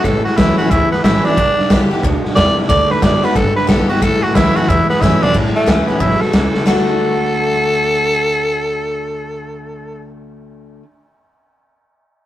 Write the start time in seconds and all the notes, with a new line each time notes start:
0.04 A1 A2 E3 A4, kick, snare
0.25 A2 E3 F#4, muted upright bass stroke, snare
0.37 C#2 A2 E3 F#3 A3 C#4 E4, kick, snare, hi-hat pedal
0.58 A2 F#3 C#4 E4 F#4, muted upright bass stroke, snare
0.66 snare
0.70 D2 E2 A2 E3 E4, kick, snare
0.92 A2 E3 B3, muted upright bass stroke, snare
1.04 A1 A2 E3 F#3 A3 C#4 E4, kick, snare, hi-hat pedal
1.25 A2 F#3 C#4 D4 E4, snare
1.31 snare
1.37 G1 G2 D3, kick, snare
1.57 B1 G2 D3, snare
1.70 B1 G2 D3 E3 G3 B3 G4, kick, snare, hi-hat pedal
1.91 G2 E3 B3 G4, muted upright bass stroke, snare
1.98 snare
2.03 D2 G2 B2 D3, kick, snare
2.24 G2 D3, muted upright bass stroke, snare
2.35 E2 G2 C3 E3 D5, kick, snare, hi-hat pedal
2.57 G2 E3, muted upright bass stroke, snare
2.63 snare
2.69 D2 D3 A3 D5, kick, snare
2.90 D3 A3 B4, muted upright bass stroke, snare
3.02 F#2 D3 A3 B3 D4 F#4 D5, kick, snare, hi-hat pedal
3.23 D3 B3 D4 F#4 B4, muted upright bass stroke, snare
3.29 snare
3.35 G1 G2 D3 A4, kick, snare
3.56 G2 D3 B4, snare
3.67 B1 G2 D3 E3 G3 B3 G4 A4, kick, snare, hi-hat pedal
3.89 G2 E3 B3 F#4 G4, muted upright bass stroke, snare
3.96 snare
4.02 A1 A2 E3 A4, kick, snare
4.22 C#2 A2 E3 F#4, snare
4.35 C#2 E3 F#3 A3 C#4 E4, kick, snare, hi-hat pedal
4.55 A2 F#3 C#4 E4 F#4, muted upright bass stroke, snare
4.63 snare
4.68 E2 A2 E3 E4, kick, snare
4.89 A2 E3 B3, muted upright bass stroke, snare
5.01 F#2 A2 E3 F#3 A3 C#4 E4, kick, snare, hi-hat pedal
5.22 A2 F#3 C#4 D4 E4, muted upright bass stroke, floor tom
5.34 A1 A2 E3, kick, snare, crash
5.45 snare
5.55 A2 E3 A3, snare
5.66 C#2 A2 E3 A3 C#4 E4, snare, hi-hat pedal
5.88 A2 E3 B3 C#4 E4, muted upright bass stroke, snare
6.00 A1 A2 B2 F#3 E4, kick, snare
6.11 snare
6.21 A2 F#3 A4, muted upright bass stroke, snare
6.33 C#2 A2 C#3 E3, snare, hi-hat pedal
6.55 A2 E3, muted upright bass stroke, snare
6.66 D2 D3 A3 D4 F#4 A4, snare, ride bell
6.70 F#4